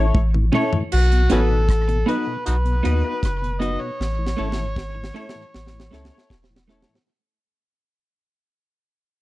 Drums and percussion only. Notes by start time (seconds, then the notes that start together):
0.14 kick, high tom
0.34 mid tom
0.53 mid tom
0.73 floor tom
0.92 crash
1.12 closed hi-hat
1.30 closed hi-hat
1.69 kick, cross-stick, closed hi-hat
1.89 closed hi-hat
2.08 closed hi-hat
2.46 closed hi-hat
2.66 closed hi-hat
2.85 closed hi-hat
3.23 kick, cross-stick, closed hi-hat
3.44 closed hi-hat
3.62 closed hi-hat
4.01 snare
4.26 snare
4.52 snare
4.76 kick, snare
5.04 snare
5.29 snare
5.54 snare
5.67 snare
5.80 snare
5.93 snare
6.05 snare
6.18 snare
6.30 kick, snare
6.44 snare
6.56 snare
6.69 snare
6.82 snare
6.95 snare